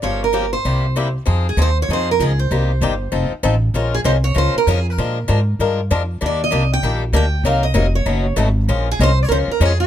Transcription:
X:1
M:4/4
L:1/16
Q:"Swing" 1/4=194
K:Gphr
V:1 name="Steel-string acoustic guitar"
_d2 B4 c8 z2 | [K:Fm] z2 A2 c2 d2 c2 B2 A2 c2- | c8- c2 z6 | z2 A2 c2 d2 c2 B2 A2 B2- |
B8- B2 z6 | =d2 e4 g4 z2 g4 | f2 e4 d6 z4 | z2 A2 c2 d3/2 B/2 c2 B2 A2 G2 |]
V:2 name="Steel-string acoustic guitar"
[_D,F,B,FG]2 z2 [D,F,B,FG]2 z2 [C,G,B,=EG]2 z2 [C,G,B,EG]2 z2 | [K:Fm] [F,CEA]2 z2 [F,CEA]2 z2 [F,CEA]2 z2 [F,CEA]2 z2 | [C,G,B,EG]2 z2 [C,G,B,EG]2 z2 [F,CE=A]2 z2 [F,CEA]2 z2 | [F,A,DFB]2 z2 [F,A,DFB]2 z2 [F,A,DFB]2 z2 [F,A,DFB]2 z2 |
[F,A,=DFB]2 z2 [F,A,DFB]2 z2 [F,A,DFB]2 z2 [F,A,DFB]2 z2 | [E,G,B,=DG]2 z2 [E,G,B,DG]2 z2 [E,G,B,DG]2 z2 [E,G,B,DG]2 z2 | [C,_G,B,EB]2 z2 [C,G,B,EB]2 z2 [=B,,^F,=A,^D^F]2 z2 [B,,F,A,DF]2 z2 | [F,A,DFB]2 z2 [F,A,DFB]2 z2 [F,A,DFB]2 z2 [F,A,DFB]2 z2 |]
V:3 name="Upright bass" clef=bass
G,,,8 C,,8 | [K:Fm] F,,4 E,,4 F,,4 D,,4 | C,,4 G,,,4 F,,,2 z2 =A,,,4 | B,,,4 C,,4 D,,2 z2 F,,4 |
B,,4 A,,4 G,,4 F,,4 | E,,4 C,,4 B,,,4 =D,,4 | C,,4 F,,,4 ^F,,,4 ^G,,,4 | B,,,4 C,,4 D,,2 z2 F,,4 |]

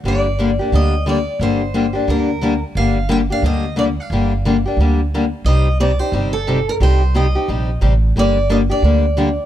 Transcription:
X:1
M:4/4
L:1/16
Q:"Swing" 1/4=178
K:Gm
V:1 name="Steel-string acoustic guitar"
d8 e4 d4 | c8 B6 z2 | f4 g2 f2 e4 d2 f2- | f6 z8 z2 |
e4 d2 c4 A4 B2 | c4 e8 z4 | d4 e2 d8- d2 |]
V:2 name="Steel-string acoustic guitar"
[D,G,B,DG]2 z2 [D,G,B,DG] z [B,DG]2 [D,G,B,DG]2 z2 [D,G,B,DG] z3 | [D,G,B,DG]2 z2 [D,G,B,DG] z [B,DG]2 [D,G,B,DG]2 z2 [D,G,B,DG] z3 | [D,G,B,DG]2 z2 [D,G,B,DG] z [B,DG]2 [D,G,B,DG]2 z2 [D,G,B,DG] z3 | [D,G,B,DG]2 z2 [D,G,B,DG] z [B,DG]2 [D,G,B,DG]2 z2 [D,G,B,DG] z3 |
[C,G,CEG]2 z2 [C,G,CEG] z [CEG]2 [C,G,CEG]2 z2 [C,G,CEG] z3 | [C,G,CEG]2 z2 [C,G,CEG] z [CEG]2 [C,G,CEG]2 z2 [C,G,CEG] z3 | [D,G,B,DG]2 z2 [D,G,B,DG] z [B,DG]2 [D,G,B,DG]2 z2 [D,G,B,DG] z3 |]
V:3 name="Upright bass" clef=bass
G,,,8 D,,8 | G,,,8 D,,8 | G,,,8 D,,8 | G,,,8 D,,8 |
C,,8 G,,,8 | C,,8 B,,,4 A,,,4 | G,,,8 D,,8 |]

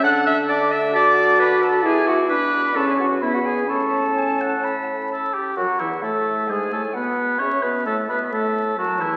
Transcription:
X:1
M:4/4
L:1/16
Q:1/4=132
K:A
V:1 name="Flute"
f'2 e'2 d'2 e'2 d'4 b2 a2 | g2 f2 b4 a g f2 e f g2 | a12 z4 | f4 e4 g4 f4 |
e12 a4 |]
V:2 name="Oboe"
a4 a4 a8 | d'4 d'4 c'4 b4 | c'4 g2 f2 b4 A2 =G2 | F2 E2 A4 G2 A2 B4 |
c2 B2 A2 B2 A4 F2 E2 |]
V:3 name="Clarinet"
f2 e2 d2 e2 d4 B2 A2 | G2 F2 B4 A G F2 E F G2 | A12 z4 | F,2 E,2 A,4 G,2 A,2 B,4 |
C2 B,2 A,2 B,2 A,4 F,2 E,2 |]
V:4 name="French horn"
D6 z2 F8 | E4 D4 C4 B,4 | C12- C2 z2 | F,2 E,2 A,4 G,2 A,2 B,4 |
C2 B,2 A,2 B,2 A,4 F,2 E,2 |]
V:5 name="Bassoon" clef=bass
D,16 | B,,8 E,,4 E,,4 | A,,12- A,,2 z2 | F,,2 E,,2 A,,4 G,,2 A,,2 B,,4 |
C,2 B,,2 A,,2 B,,2 A,,4 F,,2 E,,2 |]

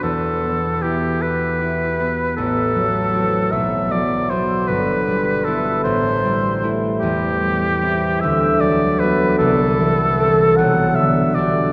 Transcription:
X:1
M:6/8
L:1/8
Q:3/8=51
K:Em
V:1 name="Oboe"
A2 G B3 | A3 e d c | B2 A c2 z | G3 e d B |
A3 f e d |]
V:2 name="Harp"
[E,,B,] B, E G E B, | A,,, F, [CF] B,,, F, [B,F] | G,,, G, [B,E] A,,, G, [A,E] | E,, G, [CE] D,, F, [B,F] |
C,, E, [CA] B,,, D, [DG] |]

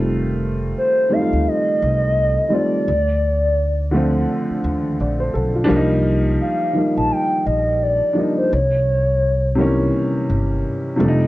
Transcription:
X:1
M:4/4
L:1/16
Q:"Swing 16ths" 1/4=85
K:Cdor
V:1 name="Soft synth lead"
z4 c2 f2 e6 d2- | d8- d2 z6 | z4 f3 a g2 e2 d3 c | _d8 z8 |]
V:2 name="Upright piano"
z16 | z12 d c A F- | F z12 z3 | z16 |]
V:3 name="Upright piano"
[E,G,A,CF]6 [E,G,A,CEF]8 [E,G,A,CF]2 | z6 [D,F,A,CF]8 z2 | [F,G,B,DE]6 [E,F,G,B,E]8 [F,G,B,DE]2 | z6 [C,E,=E,G,B,_D]8 [C,F,G,A,=D_E]2 |]
V:4 name="Upright bass" clef=bass
F,,,4 z3 D,, z2 C,,3 z3 | D,,8 z2 E,,2 B,,,2 =B,,,2 | C,,4 z3 B,,, z2 B,,,3 z3 | C,,8 z2 G,,,2 z2 F,,,2 |]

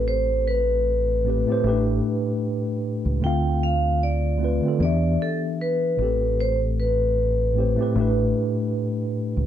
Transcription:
X:1
M:4/4
L:1/16
Q:"Swing 16ths" 1/4=76
K:Am
V:1 name="Vibraphone"
c2 B8 z6 | g2 f2 d4 d2 A2 B4 | c2 B8 z6 |]
V:2 name="Tine electric piano"
[A,,A,CGA]4 z2 [A,,A,CGB] [A,,A,CGc] [A,,A,^CDGB]6 z2 | [D,A,CFf]4 z2 [D,A,CFB] [D,A,CFA] [E,B,DGe]4- [E,B,DGe] z [A,,A,CGA]2- | [A,,A,CGA]4 z2 [A,,A,CGc] [A,,A,CGB] [A,,A,DGB]6 z2 |]
V:3 name="Fingered electric bass" clef=bass
A,,,6- A,,, z A,,,2 z4 z ^C,, | D,,6- D,, z E,,2 z4 A,,,2- | A,,,6- A,,, z A,,,2 z4 z ^C,, |]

